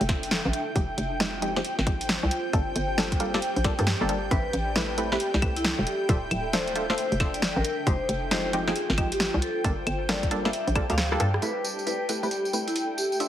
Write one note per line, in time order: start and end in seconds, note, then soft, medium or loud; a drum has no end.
0.00 0.40 F1 medium
0.00 1.36 D4 medium
0.00 0.53 A4 medium
0.00 0.53 E5 medium
0.00 11.41 G5 medium
0.00 closed hi-hat soft
0.09 0.23 D4 medium
0.09 0.23 F4 medium
0.09 0.23 A4 medium
0.09 0.23 C5 medium
0.09 0.23 E5 medium
0.09 kick loud
0.09 snare medium
0.09 closed hi-hat loud
0.23 closed hi-hat medium
0.31 snare loud
0.31 closed hi-hat medium
0.45 0.52 A1 medium
0.53 3.26 F4 medium
0.53 closed hi-hat loud
0.76 0.94 F1 loud
0.76 0.84 F3 loud
0.76 0.84 G#3 medium
0.76 0.84 C4 medium
0.76 0.84 D#4 medium
0.76 0.84 G4 loud
0.76 kick loud
0.76 closed hi-hat medium
0.98 1.61 F1 medium
0.98 closed hi-hat loud
1.06 3.26 C5 medium
1.20 1.40 F3 medium
1.20 1.40 G#3 medium
1.20 1.40 C4 medium
1.20 1.40 D#4 medium
1.20 1.40 G4 medium
1.20 snare loud
1.20 closed hi-hat medium
1.42 1.54 F3 medium
1.42 1.54 G#3 medium
1.42 1.54 C4 medium
1.42 1.54 D#4 medium
1.42 1.54 G4 loud
1.42 3.26 G5 medium
1.42 closed hi-hat loud
1.56 1.61 F3 loud
1.56 1.61 G#3 medium
1.56 1.61 C4 medium
1.56 1.61 D#4 medium
1.56 1.61 G4 loud
1.56 snare medium
1.65 closed hi-hat medium
1.79 2.18 G#1 medium
1.79 snare medium
1.87 2.01 F3 medium
1.87 2.01 G#3 medium
1.87 2.01 C4 medium
1.87 2.01 D#4 medium
1.87 2.01 G4 medium
1.87 kick loud
1.87 closed hi-hat loud
2.01 closed hi-hat medium
2.09 snare loud
2.09 closed hi-hat medium
2.23 2.29 C2 medium
2.31 closed hi-hat loud
2.53 2.72 G1 loud
2.53 2.62 G3 medium
2.53 2.62 A#3 medium
2.53 2.62 D4 medium
2.53 2.62 F4 medium
2.53 5.02 G4 medium
2.53 2.62 A4 loud
2.53 kick loud
2.53 closed hi-hat medium
2.76 3.39 G1 medium
2.76 closed hi-hat loud
2.98 3.18 G3 medium
2.98 3.18 A#3 medium
2.98 3.18 D4 medium
2.98 3.18 F4 medium
2.98 3.18 A4 medium
2.98 snare loud
2.98 closed hi-hat medium
3.12 5.03 D5 loud
3.12 kick medium
3.12 closed hi-hat medium
3.20 3.32 G3 medium
3.20 3.32 A#3 medium
3.20 3.32 D4 medium
3.20 3.32 F4 medium
3.20 3.32 A4 medium
3.20 closed hi-hat loud
3.34 3.39 G3 loud
3.34 3.39 A#3 medium
3.34 3.39 D4 medium
3.34 3.39 F4 medium
3.34 3.39 A4 loud
3.34 snare medium
3.42 closed hi-hat medium
3.56 3.78 A#1 medium
3.56 closed hi-hat soft
3.64 3.73 G3 medium
3.64 3.73 A#3 medium
3.64 3.73 D4 medium
3.64 3.73 F4 medium
3.64 3.73 A4 loud
3.64 kick loud
3.64 snare medium
3.64 closed hi-hat loud
3.79 3.94 G2 loud
3.79 3.84 G3 medium
3.79 3.84 A#3 medium
3.79 3.84 D4 medium
3.79 3.84 F4 medium
3.79 3.84 A4 medium
3.79 closed hi-hat medium
3.87 snare loud
3.87 closed hi-hat medium
4.01 4.28 G1 medium
4.01 4.08 G3 loud
4.01 4.08 A#3 medium
4.01 4.08 D4 medium
4.01 4.08 F4 medium
4.01 4.08 A4 loud
4.09 4.18 G3 medium
4.09 4.18 A#3 medium
4.09 4.18 D4 medium
4.09 4.18 F4 medium
4.09 4.18 A4 loud
4.09 closed hi-hat loud
4.31 4.50 A1 loud
4.31 4.40 A3 loud
4.31 4.40 C4 medium
4.31 4.40 E4 medium
4.31 4.40 G4 medium
4.31 7.64 A4 medium
4.31 4.40 B4 loud
4.31 4.52 B4 loud
4.31 kick loud
4.31 closed hi-hat medium
4.43 7.64 E5 medium
4.53 5.17 A1 medium
4.53 closed hi-hat loud
4.76 4.96 A3 medium
4.76 4.96 C4 medium
4.76 4.96 E4 medium
4.76 4.96 G4 medium
4.76 4.92 B4 medium
4.76 4.96 B4 medium
4.76 snare loud
4.76 closed hi-hat medium
4.98 5.10 A3 medium
4.98 5.10 C4 medium
4.98 5.10 E4 medium
4.98 5.10 G4 medium
4.98 5.10 B4 loud
4.98 closed hi-hat loud
5.12 5.17 A3 medium
5.12 5.17 C4 medium
5.12 5.17 E4 medium
5.12 5.17 G4 medium
5.12 5.31 G4 medium
5.12 5.17 B4 loud
5.12 snare medium
5.20 closed hi-hat medium
5.34 5.73 C2 medium
5.34 snare medium
5.42 5.56 A3 medium
5.42 5.56 C4 medium
5.42 5.56 E4 medium
5.42 5.56 G4 medium
5.42 5.56 B4 medium
5.42 kick loud
5.42 closed hi-hat loud
5.42 claves medium
5.56 5.69 E4 medium
5.56 closed hi-hat medium
5.64 snare loud
5.64 closed hi-hat medium
5.79 5.85 E1 medium
5.87 6.04 G4 medium
5.87 closed hi-hat loud
6.09 6.27 D1 loud
6.09 6.18 D4 loud
6.09 8.47 D4 medium
6.09 6.18 F4 medium
6.09 6.18 A4 medium
6.09 6.18 C5 medium
6.09 6.18 E5 loud
6.09 kick loud
6.09 closed hi-hat medium
6.31 6.95 D1 medium
6.31 closed hi-hat loud
6.31 claves medium
6.53 6.74 D4 medium
6.53 6.74 F4 medium
6.53 6.74 A4 medium
6.53 6.74 C5 medium
6.53 6.70 C5 medium
6.53 6.74 E5 medium
6.53 snare loud
6.53 closed hi-hat medium
6.68 closed hi-hat medium
6.76 6.88 D4 medium
6.76 6.88 F4 medium
6.76 6.88 A4 medium
6.76 6.88 C5 medium
6.76 6.88 E5 medium
6.76 closed hi-hat loud
6.90 6.95 D4 loud
6.90 6.95 F4 medium
6.90 6.95 A4 medium
6.90 6.95 C5 medium
6.90 7.09 C5 medium
6.90 6.95 E5 loud
6.90 snare medium
6.98 closed hi-hat medium
7.12 7.51 F1 medium
7.12 closed hi-hat soft
7.20 7.34 D4 medium
7.20 7.34 F4 medium
7.20 7.34 A4 medium
7.20 7.34 C5 medium
7.20 7.34 E5 medium
7.20 kick medium
7.20 snare medium
7.20 closed hi-hat loud
7.20 claves medium
7.34 7.41 D5 medium
7.34 closed hi-hat medium
7.42 snare loud
7.42 closed hi-hat medium
7.56 7.63 A1 medium
7.56 7.69 A#4 medium
7.64 10.26 F4 medium
7.64 closed hi-hat loud
7.87 8.05 F1 loud
7.87 7.95 F3 loud
7.87 7.95 G#3 medium
7.87 7.95 C4 medium
7.87 7.95 D#4 medium
7.87 7.95 G4 loud
7.87 8.07 C5 loud
7.87 kick loud
7.87 closed hi-hat medium
8.09 8.73 F1 medium
8.09 closed hi-hat loud
8.17 10.37 C5 medium
8.31 8.51 F3 medium
8.31 8.51 G#3 medium
8.31 8.51 C4 medium
8.31 8.51 D#4 medium
8.31 8.51 G4 medium
8.31 8.48 C5 loud
8.31 snare loud
8.31 closed hi-hat medium
8.53 8.65 F3 medium
8.53 8.65 G#3 medium
8.53 8.65 C4 medium
8.53 8.65 D#4 medium
8.53 8.65 G4 medium
8.53 10.37 G5 medium
8.53 closed hi-hat loud
8.67 8.72 F3 loud
8.67 8.72 G#3 medium
8.67 8.72 C4 medium
8.67 8.72 D#4 medium
8.67 8.72 G4 loud
8.67 8.87 G#4 medium
8.67 snare medium
8.76 closed hi-hat medium
8.90 9.29 G#1 medium
8.90 snare medium
8.98 9.12 F3 medium
8.98 9.12 G#3 medium
8.98 9.12 C4 medium
8.98 9.12 D#4 medium
8.98 9.12 G4 medium
8.98 kick medium
8.98 closed hi-hat loud
8.98 claves medium
9.12 9.25 G4 loud
9.12 closed hi-hat medium
9.20 snare loud
9.20 closed hi-hat medium
9.34 9.40 C2 medium
9.42 9.59 A4 medium
9.42 closed hi-hat loud
9.64 9.83 G1 loud
9.64 9.73 G3 loud
9.64 9.73 A#3 medium
9.64 9.73 D4 medium
9.64 9.73 F4 medium
9.64 12.09 G4 loud
9.64 9.73 A4 loud
9.64 kick loud
9.64 closed hi-hat medium
9.83 10.50 G1 medium
9.83 12.15 D5 medium
9.83 closed hi-hat loud
9.83 claves medium
10.09 10.29 G3 medium
10.09 10.29 A#3 medium
10.09 10.29 D4 medium
10.09 10.29 F4 medium
10.09 10.29 A4 medium
10.09 10.26 D5 medium
10.09 snare loud
10.09 closed hi-hat medium
10.23 kick medium
10.23 closed hi-hat medium
10.31 10.43 G3 medium
10.31 10.43 A#3 medium
10.31 10.43 D4 medium
10.31 10.43 F4 medium
10.31 10.43 A4 loud
10.31 closed hi-hat loud
10.45 10.50 G3 medium
10.45 10.50 A#3 medium
10.45 10.50 D4 medium
10.45 10.50 F4 medium
10.45 10.50 A4 loud
10.45 10.64 E5 medium
10.45 snare medium
10.53 closed hi-hat medium
10.67 10.89 A#1 medium
10.67 closed hi-hat soft
10.76 10.84 G3 loud
10.76 10.84 A#3 medium
10.76 10.84 D4 medium
10.76 10.84 F4 medium
10.76 10.84 A4 loud
10.76 kick loud
10.76 cross-stick medium
10.76 closed hi-hat loud
10.76 claves medium
10.90 11.17 D2 loud
10.90 10.95 G3 medium
10.90 10.95 A#3 medium
10.90 10.95 D4 medium
10.90 10.95 F4 medium
10.90 10.95 A4 medium
10.90 10.97 F5 medium
10.90 closed hi-hat medium
10.98 cross-stick medium
10.98 snare loud
10.98 closed hi-hat medium
11.12 11.19 G3 loud
11.12 11.19 A#3 medium
11.12 11.19 D4 medium
11.12 11.19 F4 medium
11.12 11.19 A4 loud
11.12 11.25 G5 medium
11.12 cross-stick medium
11.20 11.39 G2 medium
11.20 11.29 G3 medium
11.20 11.29 A#3 medium
11.20 11.29 D4 medium
11.20 11.29 F4 medium
11.20 11.29 A4 loud
11.20 closed hi-hat loud
11.34 cross-stick medium
11.42 11.51 A3 loud
11.42 11.51 C4 medium
11.42 11.51 E4 medium
11.42 11.51 G4 medium
11.42 13.28 A4 medium
11.42 11.63 B4 medium
11.42 11.51 B4 loud
11.42 13.28 G5 medium
11.42 closed hi-hat medium
11.42 tambourine soft
11.64 tambourine medium
11.79 tambourine soft
11.83 12.07 A3 medium
11.83 12.07 C4 medium
11.83 12.07 E4 medium
11.83 12.07 G4 medium
11.83 12.04 B4 medium
11.83 12.07 B4 medium
11.83 13.28 E5 medium
11.83 closed hi-hat medium
11.83 tambourine soft
12.09 12.21 A3 medium
12.09 12.21 C4 medium
12.09 12.21 E4 medium
12.09 12.21 G4 medium
12.09 12.21 B4 medium
12.09 closed hi-hat medium
12.09 tambourine medium
12.23 12.28 A3 medium
12.23 12.28 C4 medium
12.23 12.28 E4 medium
12.23 12.42 G4 medium
12.23 12.28 G4 medium
12.23 12.28 B4 loud
12.23 tambourine soft
12.31 closed hi-hat medium
12.31 tambourine soft
12.45 tambourine soft
12.53 12.67 A3 medium
12.53 12.67 C4 medium
12.53 12.67 E4 medium
12.53 12.67 G4 medium
12.53 12.67 B4 medium
12.53 tambourine medium
12.67 12.80 E4 medium
12.67 closed hi-hat medium
12.67 tambourine soft
12.76 closed hi-hat medium
12.76 tambourine soft
12.98 13.15 G4 medium
12.98 tambourine medium
13.12 tambourine soft
13.20 13.28 D4 medium
13.20 13.28 F4 medium
13.20 13.28 A4 medium
13.20 13.28 C5 medium
13.20 13.28 E5 loud
13.20 closed hi-hat medium
13.20 tambourine soft